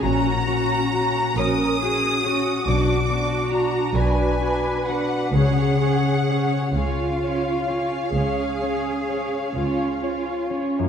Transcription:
X:1
M:12/8
L:1/8
Q:3/8=43
K:C#mix
V:1 name="Violin section"
a3 d'3 =d'2 a g2 f | f3 e8 z |]
V:2 name="Violin section"
a3 d'3 =d'2 a g2 f | f3 e8 z |]
V:3 name="Cello section"
F3 A G F F3 B3 | G3 E3 G3 E3 |]
V:4 name="Viola section"
[CF] [CF] [CF] [CF] [CF] [CF] [=DF] [DF] [DF] [DF] [DF] [DF] | [Cc] [Cc] [Cc] [Cc] [Cc] [Cc] [Cc] [Cc] [Cc] [Cc] [Cc] [Cc] |]
V:5 name="Harp"
[A,,Cc] C F c F C B,, B, F =d F B, | C, C c G c C G, C c G c C |]
V:6 name="Double bass section" clef=bass
A,,,3 A,,,3 B,,,3 B,,,3 | C,,3 C,,3 C,,3 C,,3 |]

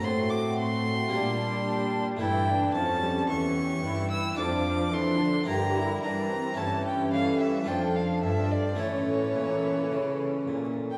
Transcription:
X:1
M:4/4
L:1/16
Q:1/4=109
K:Aphr
V:1 name="Violin"
c'2 d'2 c'8- c'3 z | g4 a4 ^c'6 e'2 | d'4 c'4 b4 b4 | a2 g2 f2 e2 g2 f2 e2 d2 |
^c12 z3 g |]
V:2 name="Violin section"
^F8 G8 | E4 A4 A2 G6 | F4 A4 B8 | G4 A4 A8 |
A12- A2 z2 |]
V:3 name="Violin section"
C8 D8 | E2 D2 ^C4 C4 E4 | D4 D4 G2 E2 D2 C2 | ^C8 D4 D4 |
^C12- C2 z2 |]
V:4 name="Harpsichord"
[CA]8 [B,DG]8 | [A,EA]16 | [DFA]8 [DEG]8 | [^CEA]8 [DFA]8 |
[A,EA]16 |]
V:5 name="Harpsichord" clef=bass
A,,8 B,,8 | G,,4 F,,4 E,,4 G,,4 | F,,4 F,4 G,,4 G,4 | G,,4 G,4 F,,4 G,,4 |
A,,4 B,,4 ^C,4 B,,4 |]
V:6 name="Viola section" clef=bass
A,8 G,8 | E,4 F,2 G,2 E,4 E,4 | F,2 F,2 E,2 D,2 D,4 E,4 | E,8 F,4 F,4 |
E,12- E,2 z2 |]
V:7 name="Cello section" clef=bass
A,,8 B,,8 | G,,4 F,,4 E,,4 G,,4 | F,,4 F,4 G,,4 G,4 | G,,4 G,4 F,,4 G,,4 |
A,,4 B,,4 ^C,4 B,,4 |]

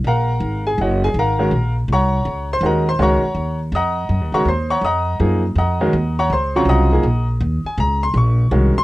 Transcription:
X:1
M:4/4
L:1/8
Q:"Swing" 1/4=163
K:Ebdor
V:1 name="Grand piano"
[Bfgb]3 [Aa] [Gdeg] [Aa] [Bfgb]2- | [Bfgb] z [dgbd']3 [cc'] [Begb] [cc'] | [dgbd']3 z [egbe']3 [dgbd'] | [cc'] [dgbd'] [egbe']3 z [egbe']2- |
[egbe'] [dgbd'] [cc'] [dgbd'] [egbe']3 z | z a b c' d'3 c' |]
V:2 name="Grand piano"
z6 z [E,A,DG] | z6 [E,A,DG] z | [E,A,DG] z6 [E,A,DG] | z4 [F,B,EA] z2 [E,A,DG] |
z3 [D,G,CF]2 [F,B,EA] z2 | z6 [E,A,DG] z |]
V:3 name="Upright bass" clef=bass
B,,,2 A,,,2 G,,,2 A,,,2 | B,,,2 C,,2 D,,2 E,,2 | D,, z E,,2 F,,2 (3G,, E,, D,, | E,,2 F,,2 G,,2 F,,2 |
E,,2 D,,2 C,,2 B,,,2 | E,, z D,,2 B,,,2 C,, z |]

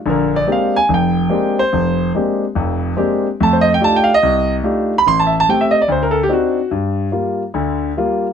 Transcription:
X:1
M:4/4
L:1/16
Q:"Swing" 1/4=144
K:Bb
V:1 name="Grand piano"
B2 d2 f2 _a2 g6 c2- | c4 z12 | a c e g a g f e4 z4 =b | c' a =e a g e _e d c B A G ^F4 |
z16 |]
V:2 name="Grand piano"
[B,,,D,]4 [_A,B,CDG]2 z2 F,,,4 [A,B,CDG]2 z2 | F,,,4 [_A,B,CDG]2 z2 [F,,,F,,]4 [A,B,CDG]2 z2 | [F,,A,]4 [A,DEFG]2 z2 C,,4 [A,DEFG]2 z2 | A,,,4 [A,CG]2 z2 D,,4 [CDE^F]2 z2 |
G,,4 [G,B,F]2 z2 [D,,D,]4 [G,B,F]2 z2 |]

